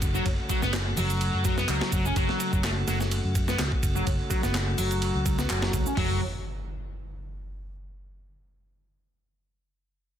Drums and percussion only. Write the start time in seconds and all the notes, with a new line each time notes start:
0.02 kick, ride, shaker
0.15 shaker
0.26 kick, ride, shaker
0.50 kick, ride, shaker
0.62 snare, shaker
0.73 snare, clap, ride, shaker
0.97 open hi-hat, low conga, shaker
1.10 ride, shaker
1.21 ride, shaker
1.45 kick, ride, shaker
1.58 snare, shaker
1.69 clap, ride, shaker
1.81 snare
1.92 kick, ride, shaker
2.05 shaker
2.16 kick, ride, shaker
2.29 snare
2.40 ride, shaker
2.53 kick, shaker
2.64 snare, clap, ride, shaker
2.88 snare, ride, shaker
3.01 snare, shaker
3.11 ride, shaker
3.35 kick, ride, shaker
3.48 snare, shaker
3.59 snare, clap, ride, shaker
3.72 kick
3.83 kick, ride, shaker
3.96 shaker
4.07 kick, ride, shaker
4.31 kick, ride, shaker
4.43 snare, shaker
4.54 snare, clap, ride, shaker
4.78 open hi-hat, shaker
4.91 ride, shaker
5.02 ride, shaker
5.26 kick, ride, shaker
5.39 snare, shaker
5.50 clap, ride, shaker
5.62 snare
5.73 kick, ride, shaker
5.86 shaker
5.97 kick, floor tom, open hi-hat